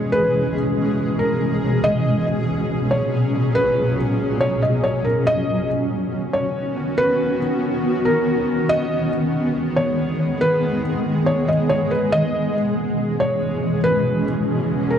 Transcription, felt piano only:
0.12 B4
1.19 A#4
1.84 D#5
2.91 C#5
3.55 B4
4.41 C#5
4.63 D#5
4.84 C#5
5.04 A#4
5.27 D#5
6.33 C#5
6.98 B4
8.05 A#4
8.69 D#5
9.76 C#5
10.41 B4
11.26 C#5
11.48 D#5
11.69 C#5
11.91 B4
12.12 D#5
13.20 C#5
13.84 B4
14.90 A#4

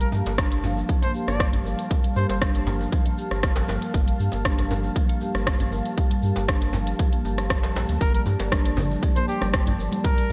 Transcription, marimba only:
0.13 G4
0.38 D4
0.64 F3
0.89 F3
1.02 A#3
1.14 G4
1.53 F3
1.91 G3
2.16 G4
2.41 D4
2.67 F3
2.93 F3
3.06 A#3
3.18 G4
3.57 F3
3.94 G3
4.20 G4
4.45 D4
4.70 F3
4.96 F3
5.09 A#3
5.21 G4
5.60 F3
5.97 G3
6.23 G4
6.48 D4
6.74 F3
6.99 F3
7.12 A#3
7.25 G4
7.63 F3
8.01 G3
8.26 G4
8.52 D4
8.77 F3
9.03 F3
9.16 A#3
9.28 G4
9.67 F3
10.04 G3

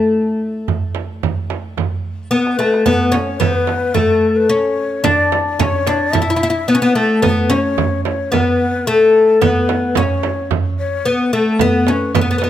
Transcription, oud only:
Already playing: A3
2.31 B3
2.59 A3
2.86 B3
3.12 C#4
3.40 B3
3.94 A3
4.49 C#4
5.04 D4
5.59 C#4
5.87 D4
6.13 E4
6.22 E4
6.30 E4
6.36 E4
6.43 E4
6.50 E4
6.68 B3
6.75 C#4
6.82 B3
6.95 A3
7.22 B3
7.50 C#4
8.32 B3
8.87 A3
9.41 B3
9.97 C#4
11.05 B3
11.33 A3
11.61 B3
11.88 C#4
12.15 B3
12.21 B3
12.31 B3
12.38 B3
12.44 B3

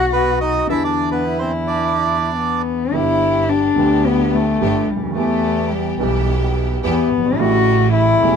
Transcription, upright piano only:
Already playing: B1 B2 D#3 F#3 B3 F#4
0.67 E2 D3 E3 G3 B3 E4
2.91 G1 G2 D3 G3 B3
2.95 G4
3.76 D2 D3 G3 B3
3.80 G4
4.61 G1 G2 D3 G3 B3 G4
4.97 C#2
5.04 D2
5.10 D#2
5.15 E2 E3 G3 B3
5.19 G4
5.98 B1 B2 E3 G3 B3
6.02 G4
6.84 E2 E3 G3 B3 G4
7.19 F#1
7.26 G1
7.32 G#1
7.38 A1 A2 C#3 G3 A3 E4
8.20 E1 E2 C#3 G3 A3
8.24 E4

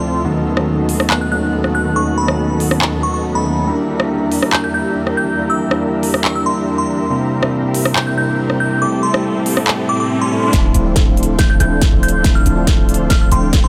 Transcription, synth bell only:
Already playing: C6
1.11 F#6
1.21 F#6
1.32 F#6
1.75 F#6
1.96 C#6
2.18 B5
3.03 C#6
3.14 C#6
3.35 B5
4.53 G6
4.64 G6
4.74 G6
5.17 G6
5.50 E6
6.25 E6
6.36 E6
6.46 C6
6.78 C6
7.96 G6
8.07 G6
8.18 G6
8.60 G6
8.82 D6
9.03 C6
9.89 D6
10.00 D6
10.21 C6
11.39 G6
11.50 G6
11.60 G6
12.03 G6
12.35 F6
13.10 F6
13.21 F6
13.32 C6
13.64 C6

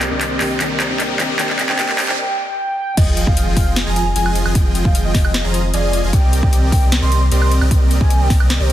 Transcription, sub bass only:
0.11 C2
0.41 C2
0.61 C2
0.90 C2
1.20 C2
1.40 C2
1.69 C2
1.79 C2
2.09 C2
2.97 F1
3.27 F1
3.57 F1
3.87 F1
4.16 F1
4.46 F1
4.55 F1
4.85 F1
5.14 F1
5.44 F1
5.74 F1
6.04 F1
6.13 C2
6.43 C2
6.72 C2
7.02 C2
7.31 C2
7.61 C2
7.71 C2
8.01 C2
8.30 C2
8.60 C2

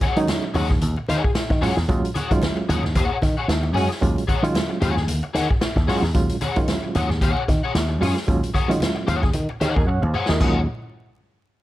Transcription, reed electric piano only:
0.16 F#3 G#3 C#4 D#4
1.62 F#3 G#3 C#4 F4
1.89 F#3 G#3 C#4 F4
2.31 F#3 G#3 C#4 F4
3.75 F#3 G#3 C#4 F#4
4.01 F#3 G#3 C#4 F4
4.43 F#3 G#3 C#4 F4
5.88 F#3 G#3 C#4 F4
6.14 F#3 G#3 C#4 F4
6.56 F#3 G#3 C#4 F4
8.01 F#3 G#3 C#4 F4
8.27 F#3 G#3 C#4 F4
8.68 F#3 G#3 C#4 F4
9.61 G#4 C#5
9.76 A#4 D#5
9.87 C#5 F#5
10.02 C5 F5
10.29 A#4 D#5
10.40 F#3 G#3 C#4 F4

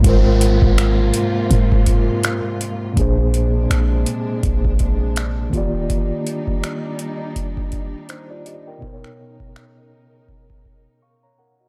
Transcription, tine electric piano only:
0.01 G#2 G#3
0.05 F4 A#4
0.09 C5
2.93 A#2 A#3
2.97 D4 G#4 C5
5.49 D#3 A#3
5.54 F4 G4
5.58 D5
8.09 D#4 C5
8.31 F4 D5
8.46 G4 D#5
8.67 A#4 G5
8.78 B2 B3
8.82 D#4 A#4
8.87 C5
8.93 C#5
11.02 F5 C#6
11.23 C#5 A#5
11.39 A#4 F#5
11.60 F#4 D#5

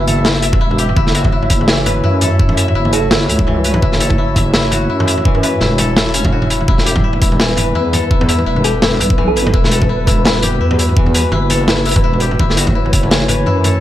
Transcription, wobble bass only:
Already playing: F#1
0.60 E1
0.96 F#1
2.04 F#2
2.75 F#1
3.29 C#2
3.66 C2
3.82 F#1
4.89 F#2
5.61 E1
6.68 E1
7.75 E2
8.46 E1
9.00 B1
9.54 E1
10.61 E2
11.32 F#1
12.04 E1
12.39 F#1
13.47 F#2

